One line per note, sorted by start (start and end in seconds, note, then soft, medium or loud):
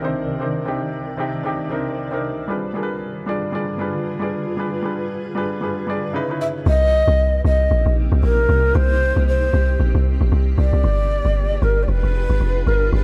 0.00 2.45 C2 medium
0.00 0.02 C3 medium
0.00 2.45 C3 medium
0.00 0.33 C3 medium
0.00 2.45 D#3 medium
0.00 0.03 C4 medium
0.00 0.33 C4 medium
0.00 0.03 D4 medium
0.00 0.34 D4 medium
0.00 0.04 D#4 medium
0.00 0.34 D#4 medium
0.00 0.68 G4 medium
0.00 2.51 A4 medium
0.00 0.38 A#4 medium
0.00 1.72 A#4 medium
0.00 2.45 D5 medium
0.05 0.34 C5 medium
0.39 0.61 C3 medium
0.39 0.62 C4 medium
0.39 0.62 D4 medium
0.39 0.62 D#4 medium
0.39 2.47 C5 medium
0.39 0.63 C5 medium
0.65 1.09 C3 medium
0.65 1.10 C4 medium
0.65 1.10 D4 medium
0.65 1.10 D#4 medium
0.65 1.11 G4 medium
1.17 1.40 C3 medium
1.17 1.40 C4 medium
1.17 1.40 D4 medium
1.17 1.41 D#4 medium
1.17 1.41 G4 medium
1.43 1.66 C3 medium
1.43 1.66 C4 medium
1.43 1.67 D4 medium
1.43 1.67 D#4 medium
1.43 1.67 G4 medium
1.70 2.02 C3 medium
1.70 2.03 C4 medium
1.70 2.03 D4 medium
1.70 2.03 D#4 medium
1.70 2.04 A#4 medium
2.11 2.42 C3 medium
2.11 2.42 C4 medium
2.11 2.43 D4 medium
2.11 2.43 D#4 medium
2.11 2.43 A#4 medium
2.48 6.11 G2 medium
2.48 6.11 D3 medium
2.48 2.70 G3 medium
2.48 2.70 D4 medium
2.48 2.71 F4 medium
2.48 6.11 F4 medium
2.48 6.11 G#4 medium
2.48 2.71 G#4 medium
2.48 6.63 B4 medium
2.48 2.71 B4 medium
2.74 3.18 G3 medium
2.74 3.18 D4 medium
2.74 3.19 F4 medium
2.74 3.19 G#4 medium
2.74 2.83 A#4 medium
2.83 3.22 B4 medium
3.26 3.49 G3 medium
3.26 3.49 D4 medium
3.26 3.49 F4 medium
3.26 3.50 G#4 medium
3.26 3.50 D5 medium
3.52 3.75 G3 medium
3.52 3.75 D4 medium
3.52 3.75 F4 medium
3.52 3.76 G#4 medium
3.52 3.76 D5 medium
3.78 4.11 G3 medium
3.78 4.11 D4 medium
3.78 4.12 F4 medium
3.78 4.12 G#4 medium
3.78 4.12 B4 medium
4.19 4.51 G3 medium
4.19 4.51 D4 medium
4.19 4.51 F4 medium
4.19 4.52 G#4 medium
4.19 4.52 D5 medium
4.57 4.79 G3 medium
4.57 4.79 D4 medium
4.57 4.80 F4 medium
4.57 4.80 G#4 medium
4.57 4.80 B4 medium
4.83 5.27 G3 medium
4.83 5.27 D4 medium
4.83 5.27 F4 medium
4.83 5.28 G#4 medium
4.83 5.28 B4 medium
5.35 5.57 G3 medium
5.35 5.58 D4 medium
5.35 5.58 F4 medium
5.35 5.58 G#4 medium
5.35 5.59 B4 medium
5.61 5.83 G3 medium
5.61 5.84 D4 medium
5.61 5.84 F4 medium
5.61 5.84 G#4 medium
5.61 5.85 B4 medium
5.87 6.14 G3 medium
5.87 6.14 D4 medium
5.87 6.14 F4 medium
5.87 6.15 G#4 medium
5.87 6.15 D5 medium
6.13 6.26 C#3 medium
6.13 6.26 C#4 medium
6.13 6.26 D#4 medium
6.13 6.27 E4 medium
6.13 6.27 B4 loud
6.28 6.59 C#3 medium
6.28 6.60 C#4 medium
6.28 6.60 D#4 medium
6.28 6.60 E4 medium
6.28 6.61 B4 medium
6.41 6.47 E5 loud
6.66 7.04 C2 loud
6.66 10.80 C3 medium
6.66 10.80 A#3 medium
6.66 8.73 C4 medium
6.66 10.80 D#4 medium
6.66 13.04 G4 medium
6.66 7.41 D#5 loud
7.08 7.41 C2 loud
7.45 7.68 C2 loud
7.45 7.94 D#5 loud
7.71 7.85 A#1 medium
7.86 8.10 A#1 medium
8.12 8.22 C2 loud
8.23 8.47 A#1 medium
8.23 8.77 A#4 loud
8.49 8.73 C2 loud
8.75 9.13 C2 loud
8.75 10.82 C4 medium
8.75 9.27 C5 loud
9.16 9.50 C2 medium
9.28 10.02 C5 loud
9.53 9.77 C2 medium
9.80 9.93 A#1 medium
9.95 10.19 C2 medium
10.21 10.31 A#1 loud
10.32 10.56 C2 loud
10.58 10.72 C2 loud
10.58 11.64 D5 loud
10.73 10.83 C2 medium
10.84 11.22 G1 loud
10.84 13.04 D4 medium
10.84 13.04 F4 medium
10.84 13.04 G#4 medium
10.84 13.04 B4 medium
11.25 11.59 G1 medium
11.62 11.86 G1 loud
11.62 11.84 A#4 medium
11.83 11.90 D5 medium
11.88 12.02 F1 medium
11.88 12.68 B4 loud
12.03 12.27 F1 medium
12.30 12.40 G1 loud
12.41 12.64 F1 medium
12.67 12.90 G1 loud
12.67 12.93 A#4 medium
12.93 13.04 G1 loud
12.93 13.04 B4 loud